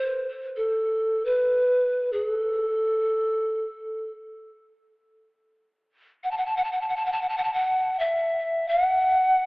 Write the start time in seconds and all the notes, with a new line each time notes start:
Already playing: C5
0.56 A4
1.25 B4
2.13 G#4
2.28 A4
6.24 F#5
6.31 A5
6.38 F#5
6.46 A5
6.57 F#5
6.64 A5
6.72 F#5
6.81 A5
6.89 F#5
6.96 A5
7.06 F#5
7.12 A5
7.22 F#5
7.29 A5
7.38 F#5
7.44 A5
7.54 F#5
7.99 E5
8.68 F#5